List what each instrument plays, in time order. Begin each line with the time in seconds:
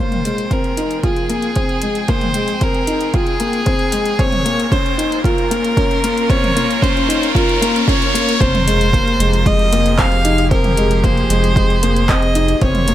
Already playing: string section F3 A#3 F4 C5
0.00 analog synth bass F1, upright piano A#3, violin C5, riser
0.11 string section G5, closed hi-hat, mid tom
0.25 upright piano G#3, closed hi-hat
0.38 string section C4, closed hi-hat
0.45 string section G#4
0.51 upright piano C4, violin A#4, kick, closed hi-hat
0.64 closed hi-hat
0.77 analog synth bass F1, upright piano D#4, closed hi-hat
0.91 closed hi-hat
1.03 upright piano F4, violin G#4, kick, closed hi-hat
1.16 closed hi-hat
1.29 upright piano A#3, closed hi-hat
1.42 closed hi-hat
1.56 upright piano C4, kick, closed hi-hat
1.69 closed hi-hat
1.82 upright piano G#3, closed hi-hat
1.95 closed hi-hat
2.08 upright piano A#3, violin C5, kick, closed hi-hat
2.21 closed hi-hat, mid tom
2.34 upright piano G#3, closed hi-hat
2.48 closed hi-hat
2.61 upright piano C4, violin A#4, kick, closed hi-hat
2.74 closed hi-hat
2.87 analog synth bass F1, upright piano D#4, closed hi-hat
3.01 closed hi-hat
3.13 upright piano F4, violin G#4, kick, closed hi-hat
3.27 closed hi-hat
3.40 upright piano A#3, closed hi-hat
3.53 closed hi-hat
3.66 upright piano C4, kick, closed hi-hat
3.79 closed hi-hat
3.92 upright piano G#3, closed hi-hat
4.06 closed hi-hat
4.19 analog synth bass F1, string section A#3, upright piano C4, violin C#5, kick, closed hi-hat
4.32 closed hi-hat, mid tom
4.45 upright piano A#3, closed hi-hat
4.53 string section F4
4.60 closed hi-hat
4.64 string section A#4
4.72 upright piano C#4, violin C5, kick, closed hi-hat
4.86 closed hi-hat
4.98 analog synth bass F1, upright piano D#4, closed hi-hat
5.12 closed hi-hat
5.24 upright piano F4, violin A#4, kick, closed hi-hat
5.38 closed hi-hat
5.51 upright piano A#3, string section C#4, closed hi-hat
5.65 closed hi-hat
5.77 upright piano C#4, kick, closed hi-hat
5.91 closed hi-hat
6.04 upright piano A#3, closed hi-hat
6.18 closed hi-hat
6.30 upright piano C4, violin C#5, kick, closed hi-hat
6.44 closed hi-hat, mid tom
6.56 upright piano A#3, closed hi-hat
6.71 closed hi-hat
6.82 upright piano C#4, violin C5, kick, closed hi-hat
6.97 closed hi-hat
7.08 analog synth bass F1, upright piano D#4, closed hi-hat
7.23 closed hi-hat
7.35 upright piano F4, violin A#4, kick, closed hi-hat
7.49 closed hi-hat
7.62 upright piano A#3, closed hi-hat
7.76 closed hi-hat
7.88 upright piano C#4, violin C#5, kick, closed hi-hat
8.02 closed hi-hat
8.14 upright piano A#3, closed hi-hat
8.29 closed hi-hat
8.41 analog synth bass F1, string section F3, upright piano C4, violin C5, kick, closed hi-hat
8.55 closed hi-hat, mid tom
8.67 upright piano G#3, closed hi-hat
8.81 string section C4, closed hi-hat
8.90 upright piano A#3, string section G4, kick
8.94 closed hi-hat
9.08 closed hi-hat
9.19 analog synth bass F1, upright piano G#3, closed hi-hat
9.33 closed hi-hat
9.46 upright piano G#3, violin D#5, kick, closed hi-hat
9.59 closed hi-hat
9.72 upright piano A#3, string section G#4, closed hi-hat
9.86 closed hi-hat
9.99 upright piano C4, violin F5, kick, clap, closed hi-hat
10.12 closed hi-hat
10.25 upright piano D#4, closed hi-hat
10.38 closed hi-hat
10.51 upright piano C4, violin A#4, kick, closed hi-hat
10.64 closed hi-hat, mid tom
10.77 upright piano G#3, closed hi-hat
10.91 closed hi-hat
11.04 upright piano A#3, violin C5, kick, closed hi-hat
11.17 closed hi-hat
11.30 analog synth bass F1, upright piano G#3, closed hi-hat
11.44 closed hi-hat
11.56 upright piano G#3, kick, closed hi-hat
11.70 closed hi-hat
11.83 upright piano A#3, closed hi-hat
11.96 closed hi-hat
12.09 upright piano C4, violin D#5, kick, clap, closed hi-hat
12.22 closed hi-hat
12.35 upright piano D#4, closed hi-hat
12.48 closed hi-hat
12.61 analog synth bass F1, string section A#3, upright piano C4, violin C#5, kick, closed hi-hat
12.69 string section F4
12.75 closed hi-hat, mid tom
12.87 upright piano A#3, string section A#4, closed hi-hat